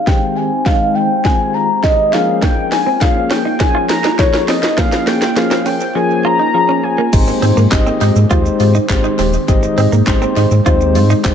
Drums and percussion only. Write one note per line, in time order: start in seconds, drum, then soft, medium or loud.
0.07 kick loud
0.07 snare medium
0.66 kick loud
0.66 snare medium
1.25 kick loud
1.25 snare medium
1.84 kick loud
1.84 snare medium
2.13 snare medium
2.42 kick loud
2.42 snare medium
2.42 closed hi-hat medium
2.72 snare medium
2.72 open hi-hat medium
3.01 kick loud
3.01 snare medium
3.01 closed hi-hat medium
3.30 snare loud
3.30 open hi-hat medium
3.60 kick loud
3.60 snare loud
3.60 closed hi-hat medium
3.89 snare loud
3.89 open hi-hat medium
4.04 snare loud
4.19 kick loud
4.19 snare loud
4.19 closed hi-hat medium
4.34 snare loud
4.48 snare loud
4.48 open hi-hat medium
4.63 snare loud
4.78 kick loud
4.78 snare loud
4.78 closed hi-hat medium
4.78 shaker medium
4.92 snare loud
4.92 shaker medium
5.07 snare loud
5.07 open hi-hat medium
5.07 shaker medium
5.22 snare loud
5.22 shaker medium
5.36 snare loud
5.36 closed hi-hat medium
5.36 shaker medium
5.51 snare loud
5.51 shaker soft
5.66 open hi-hat medium
5.66 shaker soft
5.80 shaker medium
7.13 kick loud
7.13 closed hi-hat medium
7.13 crash loud
7.13 shaker medium
7.27 shaker medium
7.42 open hi-hat medium
7.42 shaker medium
7.57 shaker medium
7.72 kick loud
7.72 snare medium
7.72 clap loud
7.72 closed hi-hat medium
7.72 shaker medium
7.87 shaker medium
8.01 open hi-hat medium
8.01 shaker medium
8.16 shaker medium
8.31 kick loud
8.31 closed hi-hat loud
8.31 shaker medium
8.46 shaker medium
8.60 open hi-hat medium
8.60 shaker medium
8.75 shaker medium
8.89 kick loud
8.89 snare loud
8.89 clap loud
8.89 closed hi-hat medium
8.89 shaker medium
9.04 shaker medium
9.19 open hi-hat medium
9.19 shaker medium
9.33 shaker medium
9.48 kick loud
9.48 closed hi-hat medium
9.48 shaker medium
9.63 shaker medium
9.78 open hi-hat medium
9.78 shaker medium
9.93 shaker medium
10.07 kick loud
10.07 snare medium
10.07 clap loud
10.07 closed hi-hat medium
10.07 shaker medium
10.22 shaker medium
10.37 open hi-hat medium
10.37 shaker soft
10.51 shaker medium
10.66 kick loud
10.66 closed hi-hat medium
10.66 shaker medium
10.81 shaker medium
10.95 open hi-hat medium
10.95 shaker medium
11.10 shaker medium
11.24 kick loud
11.24 snare loud
11.24 clap loud
11.24 closed hi-hat medium
11.24 shaker medium